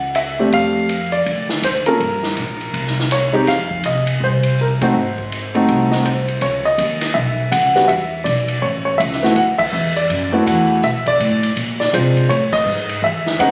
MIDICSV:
0, 0, Header, 1, 4, 480
1, 0, Start_track
1, 0, Tempo, 367647
1, 689, Time_signature, 4, 2, 24, 8
1, 17639, End_track
2, 0, Start_track
2, 0, Title_t, "Grand piano"
2, 0, Program_c, 0, 0
2, 0, Note_on_c, 0, 78, 88
2, 159, Note_off_c, 0, 78, 0
2, 205, Note_on_c, 0, 76, 77
2, 513, Note_on_c, 0, 57, 58
2, 517, Note_on_c, 0, 60, 54
2, 520, Note_on_c, 0, 62, 54
2, 523, Note_on_c, 0, 67, 66
2, 654, Note_off_c, 0, 76, 0
2, 699, Note_on_c, 0, 77, 93
2, 1136, Note_off_c, 0, 57, 0
2, 1138, Note_off_c, 0, 60, 0
2, 1140, Note_off_c, 0, 62, 0
2, 1141, Note_off_c, 0, 67, 0
2, 1465, Note_on_c, 0, 74, 82
2, 1501, Note_off_c, 0, 77, 0
2, 1916, Note_off_c, 0, 74, 0
2, 2147, Note_on_c, 0, 72, 75
2, 2213, Note_off_c, 0, 72, 0
2, 2434, Note_on_c, 0, 70, 89
2, 2438, Note_on_c, 0, 58, 61
2, 2440, Note_on_c, 0, 61, 57
2, 2446, Note_on_c, 0, 65, 57
2, 2459, Note_on_c, 0, 69, 68
2, 2597, Note_off_c, 0, 58, 0
2, 2599, Note_off_c, 0, 61, 0
2, 2601, Note_off_c, 0, 65, 0
2, 2608, Note_off_c, 0, 69, 0
2, 4074, Note_on_c, 0, 73, 75
2, 4105, Note_off_c, 0, 70, 0
2, 4343, Note_on_c, 0, 56, 66
2, 4350, Note_on_c, 0, 60, 61
2, 4352, Note_on_c, 0, 63, 64
2, 4363, Note_on_c, 0, 67, 73
2, 4512, Note_off_c, 0, 56, 0
2, 4515, Note_off_c, 0, 60, 0
2, 4516, Note_off_c, 0, 63, 0
2, 4522, Note_off_c, 0, 67, 0
2, 4547, Note_on_c, 0, 77, 87
2, 4560, Note_off_c, 0, 73, 0
2, 5036, Note_on_c, 0, 75, 78
2, 5037, Note_off_c, 0, 77, 0
2, 5474, Note_off_c, 0, 75, 0
2, 5532, Note_on_c, 0, 72, 79
2, 6009, Note_off_c, 0, 72, 0
2, 6021, Note_on_c, 0, 70, 69
2, 6087, Note_off_c, 0, 70, 0
2, 6287, Note_on_c, 0, 57, 70
2, 6293, Note_on_c, 0, 60, 65
2, 6303, Note_on_c, 0, 66, 75
2, 6306, Note_on_c, 0, 63, 63
2, 6309, Note_on_c, 0, 72, 73
2, 6444, Note_off_c, 0, 57, 0
2, 6447, Note_off_c, 0, 60, 0
2, 6453, Note_off_c, 0, 66, 0
2, 6454, Note_off_c, 0, 63, 0
2, 7241, Note_on_c, 0, 57, 67
2, 7247, Note_on_c, 0, 60, 57
2, 7252, Note_on_c, 0, 63, 62
2, 7257, Note_on_c, 0, 66, 73
2, 7690, Note_off_c, 0, 57, 0
2, 7693, Note_off_c, 0, 60, 0
2, 7696, Note_off_c, 0, 63, 0
2, 7698, Note_off_c, 0, 66, 0
2, 7715, Note_on_c, 0, 57, 53
2, 7719, Note_on_c, 0, 60, 46
2, 7725, Note_on_c, 0, 75, 70
2, 7729, Note_on_c, 0, 63, 50
2, 7733, Note_on_c, 0, 66, 63
2, 7790, Note_off_c, 0, 75, 0
2, 7861, Note_off_c, 0, 72, 0
2, 7878, Note_off_c, 0, 57, 0
2, 7880, Note_off_c, 0, 60, 0
2, 7885, Note_off_c, 0, 63, 0
2, 7887, Note_off_c, 0, 66, 0
2, 7898, Note_on_c, 0, 72, 62
2, 8383, Note_on_c, 0, 73, 82
2, 8393, Note_off_c, 0, 72, 0
2, 8688, Note_on_c, 0, 75, 91
2, 8691, Note_off_c, 0, 73, 0
2, 9322, Note_on_c, 0, 76, 76
2, 9361, Note_off_c, 0, 75, 0
2, 9775, Note_off_c, 0, 76, 0
2, 9812, Note_on_c, 0, 78, 81
2, 10123, Note_on_c, 0, 55, 75
2, 10124, Note_on_c, 0, 59, 68
2, 10131, Note_on_c, 0, 62, 70
2, 10134, Note_on_c, 0, 66, 82
2, 10281, Note_off_c, 0, 55, 0
2, 10281, Note_off_c, 0, 59, 0
2, 10285, Note_off_c, 0, 62, 0
2, 10286, Note_off_c, 0, 66, 0
2, 10286, Note_on_c, 0, 76, 83
2, 10308, Note_off_c, 0, 78, 0
2, 10737, Note_off_c, 0, 76, 0
2, 10761, Note_on_c, 0, 74, 77
2, 11256, Note_on_c, 0, 73, 79
2, 11262, Note_off_c, 0, 74, 0
2, 11324, Note_off_c, 0, 73, 0
2, 11557, Note_on_c, 0, 73, 77
2, 11724, Note_on_c, 0, 76, 82
2, 11740, Note_off_c, 0, 73, 0
2, 12048, Note_on_c, 0, 59, 67
2, 12050, Note_on_c, 0, 57, 68
2, 12062, Note_on_c, 0, 64, 61
2, 12068, Note_on_c, 0, 66, 80
2, 12202, Note_off_c, 0, 59, 0
2, 12203, Note_off_c, 0, 57, 0
2, 12209, Note_off_c, 0, 64, 0
2, 12212, Note_off_c, 0, 66, 0
2, 12223, Note_off_c, 0, 76, 0
2, 12231, Note_on_c, 0, 78, 97
2, 12297, Note_off_c, 0, 78, 0
2, 12514, Note_on_c, 0, 76, 105
2, 13008, Note_off_c, 0, 76, 0
2, 13010, Note_on_c, 0, 74, 86
2, 13478, Note_on_c, 0, 57, 68
2, 13488, Note_on_c, 0, 59, 64
2, 13493, Note_on_c, 0, 66, 76
2, 13499, Note_on_c, 0, 64, 63
2, 13661, Note_on_c, 0, 78, 83
2, 13680, Note_off_c, 0, 74, 0
2, 14098, Note_off_c, 0, 57, 0
2, 14103, Note_off_c, 0, 59, 0
2, 14106, Note_off_c, 0, 66, 0
2, 14109, Note_off_c, 0, 64, 0
2, 14149, Note_on_c, 0, 76, 91
2, 14151, Note_off_c, 0, 78, 0
2, 14451, Note_off_c, 0, 76, 0
2, 14461, Note_on_c, 0, 74, 103
2, 15060, Note_off_c, 0, 74, 0
2, 15405, Note_on_c, 0, 74, 78
2, 15566, Note_off_c, 0, 74, 0
2, 15579, Note_on_c, 0, 56, 57
2, 15579, Note_on_c, 0, 62, 55
2, 15584, Note_on_c, 0, 60, 50
2, 15588, Note_on_c, 0, 72, 75
2, 15596, Note_on_c, 0, 65, 60
2, 16051, Note_on_c, 0, 73, 89
2, 16055, Note_off_c, 0, 56, 0
2, 16055, Note_off_c, 0, 62, 0
2, 16058, Note_off_c, 0, 60, 0
2, 16064, Note_off_c, 0, 65, 0
2, 16074, Note_off_c, 0, 72, 0
2, 16358, Note_on_c, 0, 75, 106
2, 16362, Note_off_c, 0, 73, 0
2, 16802, Note_off_c, 0, 75, 0
2, 17023, Note_on_c, 0, 76, 89
2, 17464, Note_off_c, 0, 76, 0
2, 17482, Note_on_c, 0, 56, 64
2, 17487, Note_on_c, 0, 59, 61
2, 17493, Note_on_c, 0, 78, 88
2, 17496, Note_on_c, 0, 61, 58
2, 17504, Note_on_c, 0, 63, 71
2, 17639, Note_off_c, 0, 56, 0
2, 17639, Note_off_c, 0, 59, 0
2, 17639, Note_off_c, 0, 61, 0
2, 17639, Note_off_c, 0, 63, 0
2, 17639, Note_off_c, 0, 78, 0
2, 17639, End_track
3, 0, Start_track
3, 0, Title_t, "Upright bass"
3, 0, Program_c, 1, 32
3, 0, Note_on_c, 1, 37, 77
3, 636, Note_off_c, 1, 37, 0
3, 689, Note_on_c, 1, 41, 74
3, 1603, Note_off_c, 1, 41, 0
3, 1650, Note_on_c, 1, 38, 78
3, 2098, Note_off_c, 1, 38, 0
3, 2118, Note_on_c, 1, 38, 74
3, 2572, Note_off_c, 1, 38, 0
3, 2611, Note_on_c, 1, 31, 78
3, 3059, Note_off_c, 1, 31, 0
3, 3100, Note_on_c, 1, 34, 75
3, 3545, Note_off_c, 1, 34, 0
3, 3570, Note_on_c, 1, 36, 77
3, 4486, Note_off_c, 1, 36, 0
3, 4539, Note_on_c, 1, 41, 77
3, 4985, Note_off_c, 1, 41, 0
3, 5022, Note_on_c, 1, 48, 75
3, 5467, Note_off_c, 1, 48, 0
3, 5488, Note_on_c, 1, 36, 76
3, 6405, Note_off_c, 1, 36, 0
3, 6453, Note_on_c, 1, 32, 72
3, 7368, Note_off_c, 1, 32, 0
3, 7419, Note_on_c, 1, 36, 76
3, 8331, Note_off_c, 1, 36, 0
3, 8375, Note_on_c, 1, 37, 72
3, 8842, Note_off_c, 1, 37, 0
3, 8852, Note_on_c, 1, 39, 86
3, 9320, Note_off_c, 1, 39, 0
3, 9333, Note_on_c, 1, 35, 83
3, 9800, Note_off_c, 1, 35, 0
3, 9815, Note_on_c, 1, 37, 90
3, 10281, Note_off_c, 1, 37, 0
3, 10297, Note_on_c, 1, 40, 75
3, 10762, Note_off_c, 1, 40, 0
3, 10773, Note_on_c, 1, 35, 85
3, 11239, Note_off_c, 1, 35, 0
3, 11256, Note_on_c, 1, 33, 78
3, 11720, Note_off_c, 1, 33, 0
3, 11747, Note_on_c, 1, 37, 95
3, 12206, Note_off_c, 1, 37, 0
3, 12218, Note_on_c, 1, 38, 78
3, 12681, Note_off_c, 1, 38, 0
3, 12699, Note_on_c, 1, 40, 92
3, 13161, Note_off_c, 1, 40, 0
3, 13179, Note_on_c, 1, 42, 83
3, 13641, Note_off_c, 1, 42, 0
3, 13659, Note_on_c, 1, 40, 90
3, 14121, Note_off_c, 1, 40, 0
3, 14136, Note_on_c, 1, 47, 80
3, 14599, Note_off_c, 1, 47, 0
3, 14618, Note_on_c, 1, 45, 86
3, 15080, Note_off_c, 1, 45, 0
3, 15094, Note_on_c, 1, 46, 76
3, 15558, Note_off_c, 1, 46, 0
3, 15575, Note_on_c, 1, 48, 84
3, 16039, Note_off_c, 1, 48, 0
3, 16050, Note_on_c, 1, 45, 76
3, 16516, Note_off_c, 1, 45, 0
3, 16524, Note_on_c, 1, 44, 85
3, 16993, Note_off_c, 1, 44, 0
3, 17002, Note_on_c, 1, 40, 78
3, 17473, Note_off_c, 1, 40, 0
3, 17483, Note_on_c, 1, 39, 93
3, 17639, Note_off_c, 1, 39, 0
3, 17639, End_track
4, 0, Start_track
4, 0, Title_t, "Drums"
4, 193, Note_on_c, 9, 44, 51
4, 193, Note_on_c, 9, 51, 61
4, 323, Note_off_c, 9, 44, 0
4, 323, Note_off_c, 9, 51, 0
4, 684, Note_on_c, 9, 51, 53
4, 687, Note_on_c, 9, 36, 28
4, 815, Note_off_c, 9, 51, 0
4, 818, Note_off_c, 9, 36, 0
4, 1164, Note_on_c, 9, 44, 47
4, 1164, Note_on_c, 9, 51, 57
4, 1294, Note_off_c, 9, 44, 0
4, 1294, Note_off_c, 9, 51, 0
4, 1462, Note_on_c, 9, 51, 39
4, 1593, Note_off_c, 9, 51, 0
4, 1648, Note_on_c, 9, 51, 51
4, 1656, Note_on_c, 9, 36, 31
4, 1779, Note_off_c, 9, 51, 0
4, 1786, Note_off_c, 9, 36, 0
4, 1949, Note_on_c, 9, 38, 50
4, 2080, Note_off_c, 9, 38, 0
4, 2132, Note_on_c, 9, 44, 50
4, 2132, Note_on_c, 9, 51, 64
4, 2262, Note_off_c, 9, 44, 0
4, 2262, Note_off_c, 9, 51, 0
4, 2426, Note_on_c, 9, 51, 40
4, 2556, Note_off_c, 9, 51, 0
4, 2617, Note_on_c, 9, 36, 30
4, 2617, Note_on_c, 9, 51, 49
4, 2747, Note_off_c, 9, 51, 0
4, 2748, Note_off_c, 9, 36, 0
4, 2912, Note_on_c, 9, 38, 44
4, 3042, Note_off_c, 9, 38, 0
4, 3089, Note_on_c, 9, 44, 47
4, 3089, Note_on_c, 9, 51, 55
4, 3220, Note_off_c, 9, 44, 0
4, 3220, Note_off_c, 9, 51, 0
4, 3405, Note_on_c, 9, 51, 41
4, 3535, Note_off_c, 9, 51, 0
4, 3577, Note_on_c, 9, 51, 55
4, 3580, Note_on_c, 9, 36, 29
4, 3707, Note_off_c, 9, 51, 0
4, 3711, Note_off_c, 9, 36, 0
4, 3744, Note_on_c, 9, 38, 26
4, 3874, Note_off_c, 9, 38, 0
4, 3910, Note_on_c, 9, 38, 39
4, 4040, Note_off_c, 9, 38, 0
4, 4059, Note_on_c, 9, 44, 51
4, 4059, Note_on_c, 9, 51, 57
4, 4190, Note_off_c, 9, 44, 0
4, 4190, Note_off_c, 9, 51, 0
4, 4533, Note_on_c, 9, 51, 54
4, 4535, Note_on_c, 9, 38, 34
4, 4540, Note_on_c, 9, 36, 31
4, 4663, Note_off_c, 9, 51, 0
4, 4666, Note_off_c, 9, 38, 0
4, 4670, Note_off_c, 9, 36, 0
4, 4841, Note_on_c, 9, 36, 50
4, 4972, Note_off_c, 9, 36, 0
4, 5007, Note_on_c, 9, 44, 49
4, 5007, Note_on_c, 9, 51, 58
4, 5138, Note_off_c, 9, 44, 0
4, 5138, Note_off_c, 9, 51, 0
4, 5311, Note_on_c, 9, 51, 55
4, 5442, Note_off_c, 9, 51, 0
4, 5497, Note_on_c, 9, 36, 29
4, 5628, Note_off_c, 9, 36, 0
4, 5787, Note_on_c, 9, 51, 56
4, 5917, Note_off_c, 9, 51, 0
4, 5977, Note_on_c, 9, 44, 61
4, 6107, Note_off_c, 9, 44, 0
4, 6285, Note_on_c, 9, 51, 64
4, 6286, Note_on_c, 9, 36, 69
4, 6416, Note_off_c, 9, 36, 0
4, 6416, Note_off_c, 9, 51, 0
4, 6766, Note_on_c, 9, 36, 50
4, 6896, Note_off_c, 9, 36, 0
4, 6947, Note_on_c, 9, 44, 55
4, 6947, Note_on_c, 9, 51, 53
4, 7078, Note_off_c, 9, 44, 0
4, 7078, Note_off_c, 9, 51, 0
4, 7246, Note_on_c, 9, 51, 40
4, 7377, Note_off_c, 9, 51, 0
4, 7421, Note_on_c, 9, 51, 57
4, 7423, Note_on_c, 9, 36, 31
4, 7552, Note_off_c, 9, 51, 0
4, 7554, Note_off_c, 9, 36, 0
4, 7725, Note_on_c, 9, 38, 50
4, 7856, Note_off_c, 9, 38, 0
4, 7905, Note_on_c, 9, 44, 56
4, 7905, Note_on_c, 9, 51, 60
4, 8036, Note_off_c, 9, 44, 0
4, 8036, Note_off_c, 9, 51, 0
4, 8202, Note_on_c, 9, 51, 41
4, 8333, Note_off_c, 9, 51, 0
4, 8370, Note_on_c, 9, 51, 56
4, 8379, Note_on_c, 9, 36, 17
4, 8501, Note_off_c, 9, 51, 0
4, 8510, Note_off_c, 9, 36, 0
4, 8856, Note_on_c, 9, 44, 44
4, 8856, Note_on_c, 9, 51, 60
4, 8860, Note_on_c, 9, 36, 22
4, 8986, Note_off_c, 9, 44, 0
4, 8986, Note_off_c, 9, 51, 0
4, 8990, Note_off_c, 9, 36, 0
4, 9154, Note_on_c, 9, 51, 65
4, 9157, Note_on_c, 9, 38, 35
4, 9285, Note_off_c, 9, 51, 0
4, 9288, Note_off_c, 9, 38, 0
4, 9340, Note_on_c, 9, 36, 22
4, 9470, Note_off_c, 9, 36, 0
4, 9818, Note_on_c, 9, 36, 25
4, 9820, Note_on_c, 9, 44, 62
4, 9820, Note_on_c, 9, 51, 68
4, 9949, Note_off_c, 9, 36, 0
4, 9951, Note_off_c, 9, 44, 0
4, 9951, Note_off_c, 9, 51, 0
4, 10125, Note_on_c, 9, 38, 33
4, 10255, Note_off_c, 9, 38, 0
4, 10299, Note_on_c, 9, 51, 59
4, 10300, Note_on_c, 9, 36, 24
4, 10430, Note_off_c, 9, 36, 0
4, 10430, Note_off_c, 9, 51, 0
4, 10780, Note_on_c, 9, 44, 58
4, 10780, Note_on_c, 9, 51, 66
4, 10781, Note_on_c, 9, 36, 20
4, 10910, Note_off_c, 9, 44, 0
4, 10910, Note_off_c, 9, 51, 0
4, 10911, Note_off_c, 9, 36, 0
4, 11073, Note_on_c, 9, 51, 63
4, 11204, Note_off_c, 9, 51, 0
4, 11263, Note_on_c, 9, 36, 19
4, 11394, Note_off_c, 9, 36, 0
4, 11746, Note_on_c, 9, 36, 20
4, 11754, Note_on_c, 9, 44, 62
4, 11754, Note_on_c, 9, 51, 67
4, 11877, Note_off_c, 9, 36, 0
4, 11885, Note_off_c, 9, 44, 0
4, 11885, Note_off_c, 9, 51, 0
4, 11910, Note_on_c, 9, 38, 30
4, 12040, Note_off_c, 9, 38, 0
4, 12062, Note_on_c, 9, 38, 41
4, 12192, Note_off_c, 9, 38, 0
4, 12218, Note_on_c, 9, 51, 55
4, 12224, Note_on_c, 9, 36, 22
4, 12348, Note_off_c, 9, 51, 0
4, 12354, Note_off_c, 9, 36, 0
4, 12521, Note_on_c, 9, 49, 76
4, 12524, Note_on_c, 9, 36, 85
4, 12651, Note_off_c, 9, 49, 0
4, 12655, Note_off_c, 9, 36, 0
4, 12702, Note_on_c, 9, 44, 48
4, 12833, Note_off_c, 9, 44, 0
4, 13012, Note_on_c, 9, 51, 44
4, 13142, Note_off_c, 9, 51, 0
4, 13185, Note_on_c, 9, 51, 55
4, 13186, Note_on_c, 9, 36, 19
4, 13316, Note_off_c, 9, 36, 0
4, 13316, Note_off_c, 9, 51, 0
4, 13667, Note_on_c, 9, 36, 23
4, 13672, Note_on_c, 9, 44, 64
4, 13672, Note_on_c, 9, 51, 71
4, 13798, Note_off_c, 9, 36, 0
4, 13803, Note_off_c, 9, 44, 0
4, 13803, Note_off_c, 9, 51, 0
4, 14142, Note_on_c, 9, 51, 55
4, 14143, Note_on_c, 9, 36, 23
4, 14272, Note_off_c, 9, 51, 0
4, 14273, Note_off_c, 9, 36, 0
4, 14443, Note_on_c, 9, 36, 64
4, 14446, Note_on_c, 9, 51, 48
4, 14574, Note_off_c, 9, 36, 0
4, 14577, Note_off_c, 9, 51, 0
4, 14623, Note_on_c, 9, 36, 25
4, 14627, Note_on_c, 9, 44, 59
4, 14627, Note_on_c, 9, 51, 67
4, 14754, Note_off_c, 9, 36, 0
4, 14757, Note_off_c, 9, 44, 0
4, 14757, Note_off_c, 9, 51, 0
4, 14926, Note_on_c, 9, 51, 45
4, 15057, Note_off_c, 9, 51, 0
4, 15100, Note_on_c, 9, 36, 25
4, 15101, Note_on_c, 9, 51, 59
4, 15231, Note_off_c, 9, 36, 0
4, 15232, Note_off_c, 9, 51, 0
4, 15409, Note_on_c, 9, 38, 34
4, 15539, Note_off_c, 9, 38, 0
4, 15579, Note_on_c, 9, 36, 22
4, 15584, Note_on_c, 9, 44, 58
4, 15584, Note_on_c, 9, 51, 76
4, 15709, Note_off_c, 9, 36, 0
4, 15714, Note_off_c, 9, 44, 0
4, 15714, Note_off_c, 9, 51, 0
4, 15885, Note_on_c, 9, 51, 43
4, 16016, Note_off_c, 9, 51, 0
4, 16056, Note_on_c, 9, 36, 18
4, 16061, Note_on_c, 9, 51, 59
4, 16186, Note_off_c, 9, 36, 0
4, 16192, Note_off_c, 9, 51, 0
4, 16353, Note_on_c, 9, 36, 85
4, 16353, Note_on_c, 9, 49, 76
4, 16484, Note_off_c, 9, 36, 0
4, 16484, Note_off_c, 9, 49, 0
4, 16528, Note_on_c, 9, 44, 59
4, 16658, Note_off_c, 9, 44, 0
4, 16831, Note_on_c, 9, 51, 65
4, 16961, Note_off_c, 9, 51, 0
4, 17007, Note_on_c, 9, 36, 25
4, 17137, Note_off_c, 9, 36, 0
4, 17316, Note_on_c, 9, 38, 49
4, 17446, Note_off_c, 9, 38, 0
4, 17490, Note_on_c, 9, 36, 22
4, 17491, Note_on_c, 9, 44, 54
4, 17491, Note_on_c, 9, 51, 72
4, 17621, Note_off_c, 9, 36, 0
4, 17621, Note_off_c, 9, 44, 0
4, 17621, Note_off_c, 9, 51, 0
4, 17639, End_track
0, 0, End_of_file